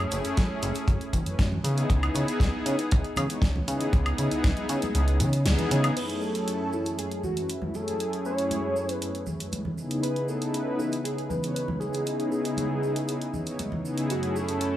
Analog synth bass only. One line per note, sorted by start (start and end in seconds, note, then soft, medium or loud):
0.11 0.21 F#1 medium
0.25 0.35 F#2 soft
0.37 0.47 F#2 medium
0.62 0.72 F#1 loud
0.88 0.98 F#2 medium
1.13 1.23 F#1 medium
1.26 1.36 F#2 soft
1.39 1.58 F#2 medium
1.64 1.84 C#3 medium
1.90 2.09 C#2 loud
2.15 2.25 C#3 medium
2.40 2.50 C#2 medium
2.66 2.76 C#3 loud
2.92 3.02 C#2 medium
3.17 3.27 C#3 medium
3.42 3.61 C#2 medium
3.68 3.87 C#3 medium
3.93 4.13 C#2 loud
4.19 4.28 C#3 medium
4.31 4.41 C#2 soft
4.44 4.54 C#2 medium
4.69 4.79 C#3 loud
4.95 5.22 C#2 medium
5.20 5.47 C#3 medium
5.45 5.55 C#2 loud
5.71 5.91 C#3 loud